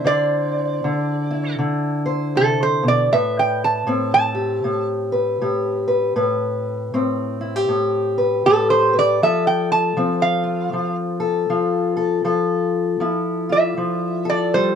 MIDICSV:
0, 0, Header, 1, 3, 480
1, 0, Start_track
1, 0, Key_signature, 0, "minor"
1, 0, Tempo, 762389
1, 37, Time_signature, 4, 2, 24, 8
1, 9287, End_track
2, 0, Start_track
2, 0, Title_t, "Resonator guitar played with a steel bar"
2, 0, Program_c, 0, 25
2, 42, Note_on_c, 0, 74, 86
2, 977, Note_off_c, 0, 74, 0
2, 1492, Note_on_c, 0, 69, 93
2, 1642, Note_off_c, 0, 69, 0
2, 1654, Note_on_c, 0, 72, 80
2, 1803, Note_off_c, 0, 72, 0
2, 1814, Note_on_c, 0, 74, 81
2, 1963, Note_off_c, 0, 74, 0
2, 1968, Note_on_c, 0, 76, 89
2, 2120, Note_off_c, 0, 76, 0
2, 2136, Note_on_c, 0, 79, 72
2, 2284, Note_off_c, 0, 79, 0
2, 2294, Note_on_c, 0, 81, 88
2, 2598, Note_off_c, 0, 81, 0
2, 2607, Note_on_c, 0, 81, 86
2, 3069, Note_off_c, 0, 81, 0
2, 5327, Note_on_c, 0, 69, 87
2, 5476, Note_off_c, 0, 69, 0
2, 5479, Note_on_c, 0, 72, 84
2, 5633, Note_off_c, 0, 72, 0
2, 5658, Note_on_c, 0, 74, 87
2, 5803, Note_off_c, 0, 74, 0
2, 5813, Note_on_c, 0, 76, 80
2, 5960, Note_off_c, 0, 76, 0
2, 5962, Note_on_c, 0, 79, 73
2, 6115, Note_off_c, 0, 79, 0
2, 6118, Note_on_c, 0, 81, 86
2, 6427, Note_off_c, 0, 81, 0
2, 6435, Note_on_c, 0, 77, 86
2, 6900, Note_off_c, 0, 77, 0
2, 8514, Note_on_c, 0, 76, 74
2, 8980, Note_off_c, 0, 76, 0
2, 9001, Note_on_c, 0, 74, 85
2, 9153, Note_off_c, 0, 74, 0
2, 9155, Note_on_c, 0, 72, 88
2, 9287, Note_off_c, 0, 72, 0
2, 9287, End_track
3, 0, Start_track
3, 0, Title_t, "Steel-string acoustic guitar"
3, 0, Program_c, 1, 25
3, 0, Note_on_c, 1, 60, 61
3, 0, Note_on_c, 1, 64, 57
3, 28, Note_on_c, 1, 50, 72
3, 35, Note_on_c, 1, 72, 67
3, 514, Note_off_c, 1, 50, 0
3, 529, Note_on_c, 1, 50, 74
3, 548, Note_off_c, 1, 60, 0
3, 820, Note_off_c, 1, 64, 0
3, 822, Note_on_c, 1, 64, 54
3, 991, Note_off_c, 1, 50, 0
3, 998, Note_on_c, 1, 50, 73
3, 1292, Note_off_c, 1, 72, 0
3, 1295, Note_on_c, 1, 72, 70
3, 1483, Note_on_c, 1, 48, 58
3, 1776, Note_off_c, 1, 48, 0
3, 1781, Note_on_c, 1, 47, 56
3, 1960, Note_off_c, 1, 50, 0
3, 1964, Note_off_c, 1, 47, 0
3, 1968, Note_on_c, 1, 45, 73
3, 1969, Note_off_c, 1, 72, 0
3, 1971, Note_on_c, 1, 71, 67
3, 2432, Note_off_c, 1, 45, 0
3, 2435, Note_on_c, 1, 45, 76
3, 2440, Note_on_c, 1, 60, 63
3, 2734, Note_off_c, 1, 64, 0
3, 2736, Note_on_c, 1, 67, 57
3, 2919, Note_off_c, 1, 45, 0
3, 2922, Note_on_c, 1, 45, 71
3, 3218, Note_off_c, 1, 71, 0
3, 3225, Note_on_c, 1, 71, 60
3, 3401, Note_off_c, 1, 45, 0
3, 3401, Note_off_c, 1, 67, 0
3, 3409, Note_on_c, 1, 45, 66
3, 3412, Note_on_c, 1, 67, 53
3, 3693, Note_off_c, 1, 71, 0
3, 3700, Note_on_c, 1, 71, 63
3, 3861, Note_off_c, 1, 71, 0
3, 3864, Note_off_c, 1, 67, 0
3, 3870, Note_off_c, 1, 45, 0
3, 3877, Note_on_c, 1, 45, 77
3, 3880, Note_on_c, 1, 71, 66
3, 4358, Note_off_c, 1, 45, 0
3, 4367, Note_on_c, 1, 45, 71
3, 4368, Note_off_c, 1, 60, 0
3, 4370, Note_on_c, 1, 60, 60
3, 4664, Note_on_c, 1, 64, 56
3, 4758, Note_off_c, 1, 64, 0
3, 4758, Note_on_c, 1, 67, 48
3, 4832, Note_off_c, 1, 45, 0
3, 4840, Note_on_c, 1, 45, 73
3, 5132, Note_off_c, 1, 71, 0
3, 5149, Note_on_c, 1, 71, 63
3, 5318, Note_off_c, 1, 45, 0
3, 5320, Note_off_c, 1, 67, 0
3, 5327, Note_on_c, 1, 45, 63
3, 5328, Note_on_c, 1, 67, 54
3, 5617, Note_off_c, 1, 71, 0
3, 5624, Note_on_c, 1, 71, 59
3, 5779, Note_off_c, 1, 67, 0
3, 5781, Note_off_c, 1, 71, 0
3, 5802, Note_off_c, 1, 45, 0
3, 5808, Note_on_c, 1, 53, 72
3, 5816, Note_on_c, 1, 69, 67
3, 6273, Note_off_c, 1, 53, 0
3, 6275, Note_on_c, 1, 53, 75
3, 6278, Note_off_c, 1, 60, 0
3, 6281, Note_on_c, 1, 60, 56
3, 6570, Note_on_c, 1, 65, 55
3, 6755, Note_off_c, 1, 53, 0
3, 6757, Note_on_c, 1, 53, 69
3, 7044, Note_off_c, 1, 69, 0
3, 7051, Note_on_c, 1, 69, 64
3, 7236, Note_off_c, 1, 53, 0
3, 7238, Note_off_c, 1, 65, 0
3, 7238, Note_on_c, 1, 53, 66
3, 7240, Note_on_c, 1, 65, 52
3, 7527, Note_off_c, 1, 69, 0
3, 7534, Note_on_c, 1, 69, 66
3, 7705, Note_off_c, 1, 69, 0
3, 7707, Note_off_c, 1, 53, 0
3, 7710, Note_on_c, 1, 53, 77
3, 7713, Note_on_c, 1, 69, 67
3, 8183, Note_off_c, 1, 53, 0
3, 8185, Note_on_c, 1, 53, 73
3, 8190, Note_off_c, 1, 60, 0
3, 8193, Note_on_c, 1, 64, 59
3, 8212, Note_off_c, 1, 65, 0
3, 8495, Note_on_c, 1, 65, 59
3, 8670, Note_off_c, 1, 53, 0
3, 8672, Note_on_c, 1, 53, 70
3, 8965, Note_off_c, 1, 69, 0
3, 8972, Note_on_c, 1, 69, 70
3, 9155, Note_on_c, 1, 55, 63
3, 9287, Note_off_c, 1, 53, 0
3, 9287, Note_off_c, 1, 55, 0
3, 9287, Note_off_c, 1, 64, 0
3, 9287, Note_off_c, 1, 65, 0
3, 9287, Note_off_c, 1, 69, 0
3, 9287, End_track
0, 0, End_of_file